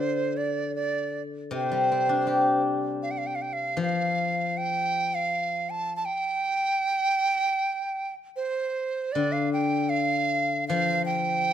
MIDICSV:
0, 0, Header, 1, 3, 480
1, 0, Start_track
1, 0, Tempo, 754717
1, 13, Time_signature, 4, 2, 24, 8
1, 4332, Tempo, 777202
1, 7247, End_track
2, 0, Start_track
2, 0, Title_t, "Dizi"
2, 0, Program_c, 0, 73
2, 0, Note_on_c, 0, 72, 81
2, 235, Note_on_c, 0, 74, 72
2, 244, Note_off_c, 0, 72, 0
2, 478, Note_off_c, 0, 74, 0
2, 482, Note_on_c, 0, 74, 77
2, 777, Note_off_c, 0, 74, 0
2, 969, Note_on_c, 0, 72, 70
2, 1664, Note_off_c, 0, 72, 0
2, 1925, Note_on_c, 0, 77, 69
2, 1978, Note_on_c, 0, 79, 65
2, 1988, Note_off_c, 0, 77, 0
2, 2022, Note_on_c, 0, 77, 69
2, 2031, Note_off_c, 0, 79, 0
2, 2078, Note_on_c, 0, 79, 69
2, 2088, Note_off_c, 0, 77, 0
2, 2133, Note_on_c, 0, 77, 67
2, 2143, Note_off_c, 0, 79, 0
2, 2174, Note_on_c, 0, 79, 64
2, 2184, Note_off_c, 0, 77, 0
2, 2244, Note_on_c, 0, 77, 71
2, 2254, Note_off_c, 0, 79, 0
2, 2419, Note_off_c, 0, 77, 0
2, 2431, Note_on_c, 0, 77, 75
2, 2909, Note_on_c, 0, 79, 88
2, 2918, Note_off_c, 0, 77, 0
2, 3273, Note_on_c, 0, 77, 87
2, 3283, Note_off_c, 0, 79, 0
2, 3625, Note_on_c, 0, 81, 93
2, 3635, Note_off_c, 0, 77, 0
2, 3790, Note_off_c, 0, 81, 0
2, 3794, Note_on_c, 0, 81, 65
2, 3849, Note_on_c, 0, 79, 92
2, 3859, Note_off_c, 0, 81, 0
2, 5149, Note_off_c, 0, 79, 0
2, 5289, Note_on_c, 0, 72, 74
2, 5759, Note_on_c, 0, 74, 90
2, 5769, Note_off_c, 0, 72, 0
2, 5883, Note_on_c, 0, 77, 81
2, 5892, Note_off_c, 0, 74, 0
2, 6007, Note_off_c, 0, 77, 0
2, 6011, Note_on_c, 0, 79, 86
2, 6235, Note_on_c, 0, 77, 89
2, 6245, Note_off_c, 0, 79, 0
2, 6716, Note_off_c, 0, 77, 0
2, 6720, Note_on_c, 0, 77, 91
2, 6949, Note_off_c, 0, 77, 0
2, 6953, Note_on_c, 0, 79, 104
2, 7247, Note_off_c, 0, 79, 0
2, 7247, End_track
3, 0, Start_track
3, 0, Title_t, "Guzheng"
3, 0, Program_c, 1, 107
3, 0, Note_on_c, 1, 50, 56
3, 960, Note_on_c, 1, 48, 58
3, 971, Note_off_c, 1, 50, 0
3, 1091, Note_on_c, 1, 55, 44
3, 1219, Note_on_c, 1, 60, 39
3, 1330, Note_on_c, 1, 62, 42
3, 1443, Note_on_c, 1, 67, 46
3, 2053, Note_off_c, 1, 55, 0
3, 2178, Note_off_c, 1, 60, 0
3, 2294, Note_off_c, 1, 62, 0
3, 2396, Note_on_c, 1, 53, 61
3, 2408, Note_off_c, 1, 48, 0
3, 2410, Note_off_c, 1, 67, 0
3, 3838, Note_off_c, 1, 53, 0
3, 5778, Note_on_c, 1, 50, 54
3, 6731, Note_on_c, 1, 53, 61
3, 7209, Note_off_c, 1, 50, 0
3, 7247, Note_off_c, 1, 53, 0
3, 7247, End_track
0, 0, End_of_file